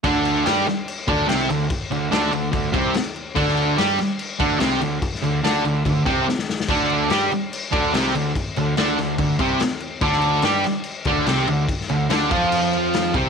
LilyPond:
<<
  \new Staff \with { instrumentName = "Distorted electric guitar" } { \clef bass \time 4/4 \key c \lydian \tempo 4 = 144 <d d'>4 <g g'>8 r4 <d d'>8 <c c'>8 d8 | r8 d8 <d d'>8 d8 d8 <c c'>8 r4 | <d d'>4 <g g'>8 r4 <d d'>8 <c c'>8 d8 | r8 d8 <d d'>8 d8 d8 <c c'>8 r4 |
<d d'>4 <g g'>8 r4 <d d'>8 <c c'>8 d8 | r8 d8 <d d'>8 d8 d8 <c c'>8 r4 | <d d'>4 <g g'>8 r4 <d d'>8 <c c'>8 d8 | r8 d8 <d d'>8 <f f'>2 <c c'>8 | }
  \new Staff \with { instrumentName = "Picked electric bass" } { \clef bass \time 4/4 \key c \lydian d,4 g,8 r4 d,8 c,8 d,8 | r8 d,8 d,8 d,8 d,8 c,8 r4 | d,4 g,8 r4 d,8 c,8 d,8 | r8 d,8 d,8 d,8 d,8 c,8 r4 |
d,4 g,8 r4 d,8 c,8 d,8 | r8 d,8 d,8 d,8 d,8 c,8 r4 | d,4 g,8 r4 d,8 c,8 d,8 | r8 d,8 d,8 f,2 c,8 | }
  \new DrumStaff \with { instrumentName = "Drums" } \drummode { \time 4/4 <cymc bd>8 cymc8 <cymc sn>8 <cymc sn>8 cymc8 <cymc bd>8 <cymc sn>8 cymc8 | <cymc bd>8 cymc8 <cymc sn>8 cymc8 <cymc bd>8 <cymc bd>8 <cymc sn>8 cymc8 | <cymc bd>16 sn16 cymc8 <cymc sn>8 <cymc sn>8 cymc8 <cymc bd>8 <cymc sn>8 cymc8 | <cymc bd>16 sn16 cymc8 <cymc sn>8 cymc8 <cymc bd>8 <cymc bd>8 sn16 sn16 sn16 sn16 |
<cymc bd>8 cymc8 <cymc sn>8 cymc8 cymc8 <cymc bd>8 <cymc sn>8 cymc8 | <cymc bd>8 cymc8 <cymc sn>8 <cymc sn>8 <cymc bd>8 <cymc bd>8 <cymc sn>8 cymc8 | <cymc bd>16 sn16 cymc8 <cymc sn>8 <cymc sn>8 cymc8 <cymc bd>8 <cymc sn>8 cymc8 | <cymc bd>16 sn16 cymc8 <cymc sn>8 <cymc bd>8 cymc8 cymc8 <cymc sn>8 <cymc bd>8 | }
>>